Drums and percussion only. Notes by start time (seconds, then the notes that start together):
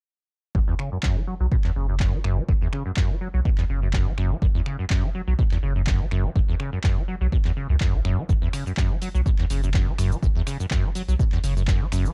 0.55 kick
0.79 finger snap
1.03 kick, clap
1.52 kick
1.64 clap
2.00 kick, clap
2.24 finger snap
2.48 kick
2.73 finger snap
2.97 kick, clap
3.45 kick
3.58 clap
3.93 kick, clap
4.18 finger snap
4.42 kick
4.66 finger snap
4.90 kick, clap
5.39 kick
5.51 clap
5.87 kick, clap
6.11 finger snap
6.36 kick
6.60 finger snap
6.84 kick, clap
7.32 kick
7.45 clap
7.80 kick, clap
8.05 finger snap
8.29 kick, shaker
8.53 finger snap, open hi-hat, shaker
8.67 shaker
8.77 kick, clap, shaker
9.02 open hi-hat, shaker
9.15 shaker
9.26 kick, shaker
9.39 clap
9.50 open hi-hat, shaker
9.64 shaker
9.74 kick, clap, shaker
9.98 finger snap, open hi-hat, shaker
10.12 shaker
10.23 kick, shaker
10.47 finger snap, open hi-hat, shaker
10.60 shaker
10.71 kick, clap, shaker
10.95 open hi-hat, shaker
11.09 shaker
11.19 kick, shaker
11.32 clap
11.44 open hi-hat, shaker
11.57 shaker
11.68 kick, clap, shaker
11.92 finger snap, open hi-hat, shaker
12.06 shaker